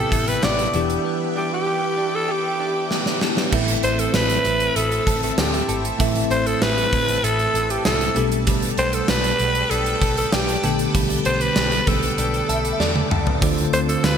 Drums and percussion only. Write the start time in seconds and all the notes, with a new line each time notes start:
0.12 kick, closed hi-hat
0.28 closed hi-hat
0.43 snare, clap
0.59 closed hi-hat
0.74 closed hi-hat
0.90 closed hi-hat
2.91 snare
3.06 snare
3.21 snare
3.37 snare
3.52 kick, crash
3.68 closed hi-hat
3.83 closed hi-hat
3.99 closed hi-hat
4.14 snare, tambourine
4.30 closed hi-hat
4.45 closed hi-hat
4.60 closed hi-hat
4.76 closed hi-hat
4.92 closed hi-hat
5.07 kick, closed hi-hat
5.23 closed hi-hat
5.38 snare, tambourine
5.54 closed hi-hat
5.69 closed hi-hat
5.85 closed hi-hat
6.00 kick, closed hi-hat
6.15 closed hi-hat
6.31 closed hi-hat
6.47 closed hi-hat
6.62 snare, tambourine
6.78 closed hi-hat
6.93 kick, closed hi-hat
7.08 closed hi-hat
7.24 closed hi-hat
7.39 closed hi-hat
7.55 closed hi-hat
7.70 closed hi-hat
7.85 snare, tambourine
8.01 closed hi-hat
8.16 closed hi-hat
8.32 closed hi-hat
8.47 kick, closed hi-hat
8.62 closed hi-hat
8.78 closed hi-hat
8.93 closed hi-hat
9.08 snare, tambourine
9.24 closed hi-hat
9.39 closed hi-hat
9.55 closed hi-hat
9.71 closed hi-hat
9.86 closed hi-hat
10.02 kick, closed hi-hat
10.17 closed hi-hat
10.32 snare, tambourine
10.49 closed hi-hat
10.64 closed hi-hat
10.79 closed hi-hat
10.95 kick, closed hi-hat
11.10 closed hi-hat
11.25 closed hi-hat
11.41 closed hi-hat
11.56 snare, tambourine
11.72 closed hi-hat
11.87 kick, closed hi-hat
12.03 closed hi-hat
12.18 closed hi-hat
12.34 closed hi-hat
12.49 closed hi-hat
12.65 closed hi-hat
12.80 snare
12.96 high tom
13.11 mid tom
13.27 floor tom
13.42 kick, closed hi-hat
13.58 closed hi-hat
13.73 closed hi-hat
13.89 closed hi-hat
14.04 snare, clap, tambourine